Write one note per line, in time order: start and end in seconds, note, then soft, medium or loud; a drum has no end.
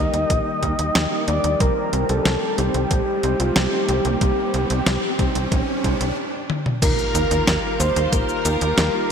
0.00 6.13 D#3 medium
0.00 0.59 G3 medium
0.00 1.56 G3 medium
0.00 0.59 A#3 medium
0.00 1.56 A#3 medium
0.00 0.59 D#4 medium
0.00 0.59 G4 medium
0.00 6.13 G4 medium
0.00 0.59 A#4 loud
0.00 1.27 D#5 loud
0.00 riser medium
0.14 0.26 D#2 medium
0.14 closed hi-hat medium
0.30 0.42 A#1 loud
0.30 kick loud
0.30 closed hi-hat medium
0.63 0.74 D#2 medium
0.63 0.76 G3 medium
0.63 0.76 A#3 medium
0.63 0.76 D#4 medium
0.63 0.76 G4 medium
0.63 0.76 A#4 loud
0.63 kick medium
0.63 closed hi-hat medium
0.79 0.91 D#2 medium
0.79 closed hi-hat medium
0.95 1.07 D#2 loud
0.95 snare loud
0.95 closed hi-hat medium
1.12 1.57 G3 medium
1.12 1.57 A#3 medium
1.12 1.57 D#4 medium
1.12 1.57 G4 medium
1.12 1.57 A#4 medium
1.28 1.40 D#2 medium
1.28 1.62 D5 loud
1.28 closed hi-hat medium
1.44 1.56 D#2 medium
1.44 closed hi-hat medium
1.60 1.72 C2 loud
1.60 6.13 G3 medium
1.60 2.05 G3 medium
1.60 6.13 C4 medium
1.60 2.05 C4 medium
1.60 2.05 D#4 medium
1.60 2.06 G4 medium
1.60 2.11 A#4 loud
1.60 2.05 C5 medium
1.60 kick loud
1.60 closed hi-hat medium
1.93 2.05 C2 medium
1.93 closed hi-hat medium
2.09 2.21 C2 medium
2.09 2.22 G3 medium
2.09 2.22 C4 medium
2.09 2.22 D#4 medium
2.09 2.22 G4 medium
2.09 2.60 A4 loud
2.09 2.22 C5 medium
2.09 closed hi-hat medium
2.25 2.38 C2 loud
2.25 snare loud
2.25 closed hi-hat medium
2.58 2.70 C2 medium
2.58 3.20 G3 medium
2.58 3.20 C4 medium
2.58 3.20 D#4 medium
2.58 3.07 G4 loud
2.58 3.20 G4 medium
2.58 3.20 C5 loud
2.58 closed hi-hat medium
2.74 2.86 C2 medium
2.74 closed hi-hat medium
2.91 3.03 A#1 loud
2.91 kick loud
2.91 closed hi-hat medium
3.07 3.41 G4 medium
3.23 3.35 C2 loud
3.23 3.36 G3 medium
3.23 3.36 C4 medium
3.23 3.36 D#4 medium
3.23 3.36 G4 medium
3.23 3.36 C5 loud
3.23 closed hi-hat medium
3.40 3.52 C2 medium
3.40 3.57 F4 medium
3.40 closed hi-hat medium
3.56 3.68 C2 loud
3.56 4.21 G4 loud
3.56 snare loud
3.56 closed hi-hat medium
3.72 4.17 G3 medium
3.72 4.17 C4 medium
3.72 4.17 D#4 medium
3.72 4.17 G4 medium
3.72 4.17 C5 medium
3.89 4.01 C2 medium
3.89 closed hi-hat medium
4.05 4.17 C2 medium
4.05 closed hi-hat medium
4.21 4.33 C2 loud
4.21 4.66 G3 medium
4.21 4.66 C4 medium
4.21 4.66 D#4 medium
4.21 4.66 G4 medium
4.21 5.48 G4 medium
4.21 4.66 C5 medium
4.21 kick loud
4.21 closed hi-hat medium
4.54 4.66 C2 medium
4.54 closed hi-hat medium
4.70 4.82 C2 medium
4.70 4.83 G3 medium
4.70 4.83 C4 medium
4.70 4.83 D#4 medium
4.70 4.83 G4 medium
4.70 4.83 C5 medium
4.70 closed hi-hat medium
4.86 4.98 C2 loud
4.86 snare loud
4.86 closed hi-hat medium
5.19 5.31 C2 medium
5.19 5.80 G3 medium
5.19 5.80 C4 medium
5.19 5.80 D#4 medium
5.19 5.80 G4 medium
5.19 5.80 C5 loud
5.19 kick loud
5.19 closed hi-hat medium
5.35 5.47 C2 medium
5.35 closed hi-hat medium
5.52 5.64 A#1 loud
5.52 kick loud
5.52 closed hi-hat medium
5.84 5.96 C2 loud
5.84 5.97 G3 medium
5.84 5.97 C4 medium
5.84 5.97 D#4 medium
5.84 5.97 G4 medium
5.84 5.97 C5 loud
5.84 kick medium
5.84 closed hi-hat medium
6.01 6.13 C2 medium
6.01 closed hi-hat medium
6.50 high tom medium
6.66 mid tom medium
6.82 6.94 D#2 loud
6.82 9.12 D#3 medium
6.82 9.12 G3 medium
6.82 7.27 A#3 medium
6.82 9.12 A#3 medium
6.82 7.27 D#4 medium
6.82 7.27 F4 medium
6.82 9.12 F4 medium
6.82 7.27 G4 medium
6.82 7.27 A#4 medium
6.82 7.76 A#4 loud
6.82 kick loud
6.82 closed hi-hat loud
6.82 crash loud
6.82 impact medium
6.82 shaker soft
6.99 shaker soft
7.15 7.27 D#2 medium
7.15 closed hi-hat medium
7.15 shaker medium
7.31 7.43 D#2 medium
7.31 7.44 A#3 medium
7.31 7.44 D#4 medium
7.31 7.44 F4 medium
7.31 7.44 G4 medium
7.31 7.44 A#4 medium
7.31 closed hi-hat medium
7.31 shaker soft
7.47 7.59 D#2 loud
7.47 snare loud
7.47 closed hi-hat medium
7.47 shaker soft
7.80 7.92 D#2 medium
7.80 8.41 A#3 medium
7.80 8.41 D#4 medium
7.80 8.41 F4 medium
7.80 8.41 G4 medium
7.80 8.41 A#4 loud
7.80 8.10 C5 loud
7.80 8.11 C5 loud
7.80 closed hi-hat medium
7.80 shaker medium
7.96 8.08 D#2 medium
7.96 closed hi-hat medium
7.96 shaker soft
8.12 8.24 A#1 loud
8.12 9.12 A#4 loud
8.12 9.07 A#4 loud
8.12 kick loud
8.12 closed hi-hat loud
8.12 shaker soft
8.29 shaker soft
8.45 8.57 D#2 medium
8.45 8.58 A#3 medium
8.45 8.58 D#4 medium
8.45 8.58 F4 medium
8.45 8.58 G4 medium
8.45 8.58 A#4 loud
8.45 closed hi-hat medium
8.45 shaker medium
8.61 8.73 D#2 medium
8.61 closed hi-hat medium
8.61 shaker soft
8.78 8.90 D#2 loud
8.78 snare loud
8.78 closed hi-hat loud
8.78 shaker soft
8.94 9.12 A#3 medium
8.94 9.12 D#4 medium
8.94 9.12 F4 medium
8.94 9.12 G4 medium
8.94 9.12 A#4 loud